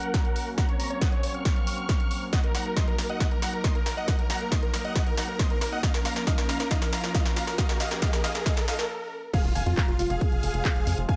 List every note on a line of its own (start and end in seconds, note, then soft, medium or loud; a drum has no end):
0.00 5.79 F#3 medium
0.00 2.29 A#3 medium
0.00 2.29 C#4 medium
0.00 0.49 A#4 medium
0.00 0.56 A#4 medium
0.00 0.49 F#5 loud
0.00 closed hi-hat soft
0.14 kick loud
0.14 snare medium
0.14 closed hi-hat medium
0.25 closed hi-hat soft
0.36 open hi-hat loud
0.58 2.31 C4 medium
0.58 0.66 F#5 medium
0.58 0.66 A#5 loud
0.58 kick loud
0.58 snare medium
0.58 closed hi-hat medium
0.69 0.77 C#5 medium
0.69 closed hi-hat soft
0.80 0.88 A#5 medium
0.80 0.88 C#6 medium
0.80 open hi-hat loud
0.90 0.99 C#5 medium
0.90 closed hi-hat soft
1.01 1.10 F#5 medium
1.01 1.10 D#6 medium
1.01 kick loud
1.01 snare medium
1.01 closed hi-hat medium
1.12 1.21 C#5 medium
1.12 closed hi-hat soft
1.23 1.32 C#5 medium
1.23 open hi-hat loud
1.34 2.24 C#6 medium
1.34 2.24 F6 loud
1.34 closed hi-hat soft
1.45 kick loud
1.45 snare medium
1.45 closed hi-hat medium
1.56 closed hi-hat soft
1.67 open hi-hat loud
1.78 closed hi-hat soft
1.89 kick loud
1.89 snare medium
1.89 closed hi-hat medium
2.00 closed hi-hat soft
2.11 open hi-hat loud
2.33 8.86 A#3 medium
2.33 5.80 D#4 medium
2.33 5.80 A#4 medium
2.33 2.41 D#5 medium
2.33 2.41 F#5 medium
2.33 kick loud
2.33 snare medium
2.33 closed hi-hat medium
2.33 riser medium
2.44 2.52 A#4 medium
2.44 closed hi-hat soft
2.55 2.63 F#5 medium
2.55 2.63 A#5 medium
2.55 snare medium
2.55 open hi-hat loud
2.66 2.74 A#4 medium
2.66 closed hi-hat soft
2.77 2.85 D#5 medium
2.77 2.85 C6 medium
2.77 kick loud
2.77 snare medium
2.77 closed hi-hat medium
2.88 2.96 A#4 medium
2.88 closed hi-hat soft
2.98 3.07 A#4 medium
2.98 snare medium
2.98 open hi-hat loud
3.09 3.19 D#5 medium
3.09 3.19 F#5 medium
3.09 closed hi-hat soft
3.20 3.29 D#5 medium
3.20 3.29 F#5 loud
3.20 kick loud
3.20 snare medium
3.20 closed hi-hat medium
3.31 3.40 A#4 medium
3.31 closed hi-hat soft
3.42 3.51 F#5 medium
3.42 3.51 A#5 medium
3.42 snare medium
3.42 open hi-hat loud
3.53 3.62 A#4 medium
3.53 closed hi-hat soft
3.64 3.73 D#5 medium
3.64 3.73 C6 medium
3.64 kick loud
3.64 snare medium
3.64 closed hi-hat medium
3.75 3.84 A#4 medium
3.75 closed hi-hat soft
3.86 3.95 A#4 medium
3.86 snare medium
3.86 open hi-hat loud
3.97 4.06 D#5 medium
3.97 4.06 F#5 medium
4.08 4.17 D#5 medium
4.08 4.17 F#5 medium
4.08 kick loud
4.08 snare medium
4.08 closed hi-hat medium
4.19 4.27 A#4 medium
4.19 closed hi-hat soft
4.30 4.38 F#5 medium
4.30 4.39 A#5 medium
4.30 snare medium
4.30 open hi-hat loud
4.41 4.49 A#4 medium
4.41 closed hi-hat soft
4.52 4.60 D#5 medium
4.52 4.60 C6 medium
4.52 kick loud
4.52 snare medium
4.52 closed hi-hat loud
4.63 4.71 A#4 medium
4.63 closed hi-hat soft
4.74 4.82 A#4 medium
4.74 snare medium
4.74 open hi-hat loud
4.85 4.94 D#5 medium
4.85 4.94 F#5 medium
4.85 closed hi-hat soft
4.96 5.04 D#5 medium
4.96 5.04 F#5 loud
4.96 kick loud
4.96 snare medium
4.96 closed hi-hat loud
5.07 5.15 A#4 medium
5.07 closed hi-hat soft
5.17 5.26 F#5 medium
5.17 5.26 A#5 medium
5.17 snare medium
5.17 open hi-hat loud
5.28 5.37 A#4 medium
5.28 closed hi-hat soft
5.39 5.48 D#5 medium
5.39 5.48 C6 medium
5.39 kick loud
5.39 snare medium
5.39 closed hi-hat medium
5.50 5.59 A#4 medium
5.50 closed hi-hat soft
5.61 5.70 A#4 medium
5.61 snare medium
5.61 open hi-hat loud
5.72 5.82 D#5 medium
5.72 5.82 F#5 medium
5.83 8.87 F3 medium
5.83 8.87 C#4 medium
5.83 7.57 A#4 medium
5.83 5.92 D#5 medium
5.83 5.92 F5 loud
5.83 kick loud
5.83 snare medium
5.83 closed hi-hat medium
5.94 6.03 A#4 medium
5.94 snare medium
5.94 closed hi-hat soft
6.05 6.14 F5 medium
6.05 6.14 A#5 medium
6.05 snare medium
6.05 open hi-hat loud
6.16 6.25 A#4 medium
6.16 snare medium
6.16 closed hi-hat soft
6.27 6.36 D#5 medium
6.27 6.36 F5 medium
6.27 kick loud
6.27 snare medium
6.27 closed hi-hat loud
6.38 6.47 A#4 medium
6.38 snare medium
6.38 closed hi-hat soft
6.49 6.58 F5 medium
6.49 6.57 A#5 medium
6.49 snare loud
6.49 open hi-hat loud
6.60 6.68 A#4 medium
6.60 snare medium
6.60 closed hi-hat soft
6.71 6.79 D#5 medium
6.71 6.79 F5 loud
6.71 kick loud
6.71 snare loud
6.71 closed hi-hat medium
6.82 6.90 A#4 medium
6.82 snare medium
6.82 closed hi-hat soft
6.93 7.01 F5 medium
6.93 7.01 A#5 medium
6.93 snare loud
6.93 open hi-hat loud
7.04 7.12 A#4 medium
7.04 snare medium
7.04 closed hi-hat soft
7.15 7.23 D#5 medium
7.15 7.23 F5 loud
7.15 kick loud
7.15 snare loud
7.15 closed hi-hat loud
7.26 7.34 A#4 medium
7.26 snare medium
7.26 closed hi-hat soft
7.36 7.45 F5 medium
7.36 7.45 A#5 medium
7.36 snare loud
7.36 open hi-hat loud
7.47 7.56 A#4 medium
7.47 snare medium
7.58 8.89 G#4 medium
7.58 7.67 D#5 medium
7.58 7.67 F5 medium
7.58 kick loud
7.58 snare loud
7.58 closed hi-hat medium
7.69 7.78 A#4 medium
7.69 snare medium
7.69 closed hi-hat soft
7.80 7.89 D#5 medium
7.80 7.89 F5 loud
7.80 snare loud
7.80 open hi-hat loud
7.91 8.00 A#4 medium
7.91 snare medium
7.91 closed hi-hat soft
8.02 8.11 D#5 medium
8.02 8.11 F5 loud
8.02 kick loud
8.02 snare loud
8.02 closed hi-hat loud
8.13 8.22 A#4 medium
8.13 snare medium
8.13 closed hi-hat soft
8.24 8.32 D#5 medium
8.24 8.32 F5 loud
8.24 snare loud
8.24 open hi-hat loud
8.35 8.43 A#4 medium
8.35 snare loud
8.35 closed hi-hat soft
8.46 8.54 D#5 medium
8.46 8.54 F5 loud
8.46 kick loud
8.46 snare loud
8.46 closed hi-hat medium
8.57 8.65 A#4 medium
8.57 snare loud
8.57 closed hi-hat soft
8.68 8.76 D#5 medium
8.68 8.76 F5 loud
8.68 snare loud
8.68 open hi-hat loud
8.79 8.87 A#4 medium
8.79 snare medium
8.79 closed hi-hat soft
9.33 11.16 C3 medium
9.33 11.16 F3 medium
9.33 11.16 G#3 medium
9.33 11.16 F4 medium
9.33 9.42 G#4 medium
9.33 9.42 F5 loud
9.33 kick loud
9.33 closed hi-hat medium
9.33 crash loud
9.33 impact medium
9.44 9.52 F1 medium
9.44 9.53 F4 medium
9.44 closed hi-hat soft
9.55 9.63 F1 loud
9.55 9.64 F5 medium
9.55 9.64 G#5 medium
9.55 open hi-hat loud
9.66 9.74 F2 medium
9.66 9.75 F4 medium
9.66 closed hi-hat medium
9.77 9.86 F5 medium
9.77 9.86 A#5 medium
9.77 kick loud
9.77 clap loud
9.77 closed hi-hat medium
9.88 9.96 F1 medium
9.88 9.97 F4 medium
9.88 closed hi-hat soft
9.99 10.07 F1 loud
9.99 10.08 F4 medium
9.99 open hi-hat loud
10.10 10.18 F1 loud
10.10 11.00 G#4 medium
10.10 11.00 F5 loud
10.10 closed hi-hat medium
10.21 kick loud
10.21 closed hi-hat medium
10.32 10.40 F1 medium
10.32 closed hi-hat soft
10.43 10.51 F1 loud
10.43 open hi-hat loud
10.54 10.62 F1 medium
10.54 closed hi-hat medium
10.65 kick loud
10.65 clap loud
10.65 closed hi-hat medium
10.76 10.84 F1 medium
10.76 closed hi-hat soft
10.87 10.95 F2 medium
10.87 open hi-hat loud
10.98 11.06 F1 medium
10.98 closed hi-hat medium
11.09 11.16 F5 medium
11.09 11.16 G#5 loud
11.09 kick loud
11.09 closed hi-hat medium